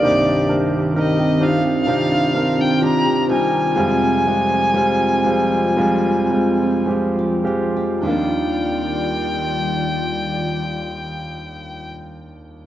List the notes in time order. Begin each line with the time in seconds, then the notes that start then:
Already playing: A#3 D4 A#4 D5
0.03 C2 G2 C3 D#3 C4 D4 D#4 G4
0.29 D4
0.48 C4 D4 D#4 A#4
0.94 D#3 C4 D#4 A#4
0.99 D#5
1.19 G4
1.40 C4 D4 D#4 F4 F5
1.65 G4
1.87 C3 C4 D4 D#4 F4
2.11 D4
2.34 C4 D4 D#4 A#4
2.58 D4 G5
2.81 D#3 C4 D4 D#4 G4 A#5
3.05 G4
3.28 G3 C4 D4 D#4 G#5
3.75 F2 C3 F3 G3 G#3 C4 F4
4.01 C4
4.25 G3 G#3 C4 F4
4.52 C4
4.74 F3 G3 G#3 C4 F4
5.25 G3 G#3 C4 F4
5.29 G#3
5.77 G3 G#3 C4 F4
5.81 F2
6.09 C4
6.31 G3 G#3 C4 F4
6.36 G#3
6.63 C4
6.86 G#3 C4 F4 G4
6.91 F3
7.19 G4
7.44 G#3 C4 F4 G4
7.76 G4
7.99 D#2 G3 D4
8.03 D#3 G3 D#4 F4 D5 G5
8.07 A#3 D4 F4